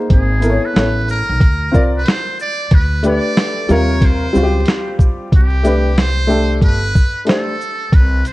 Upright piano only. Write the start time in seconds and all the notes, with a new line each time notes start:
Already playing: A#3 D#4 G#4 C5
0.40 B3 E4 A4 A#4
0.50 C#5
0.74 B3 E4 A4 C#5
1.72 C4 F4 A#4 D5
3.03 A3 D4 G4 B4
3.69 C3 G3 F4 A#4
4.33 G3 C4 F4 F#4
4.43 G4
5.63 A3 D4 G4 B4
6.27 A3 D4 G4 A4
7.25 A3 D4 G4 C5